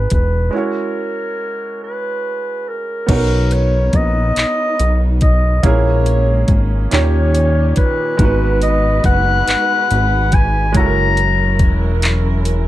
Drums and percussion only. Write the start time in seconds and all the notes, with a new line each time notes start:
0.10 kick, closed hi-hat
3.09 kick, closed hi-hat, crash
3.51 closed hi-hat
3.93 kick, closed hi-hat
4.36 clap, closed hi-hat
4.80 closed hi-hat
5.21 kick, closed hi-hat
5.64 kick, closed hi-hat
6.06 closed hi-hat
6.48 kick, closed hi-hat
6.91 clap, closed hi-hat
7.35 closed hi-hat
7.76 kick, closed hi-hat
8.19 kick, closed hi-hat
8.62 closed hi-hat
9.04 kick, closed hi-hat
9.48 clap, closed hi-hat
9.91 closed hi-hat
10.32 kick, closed hi-hat
10.74 kick, closed hi-hat
11.17 closed hi-hat
11.59 kick, closed hi-hat
12.02 clap, closed hi-hat
12.45 closed hi-hat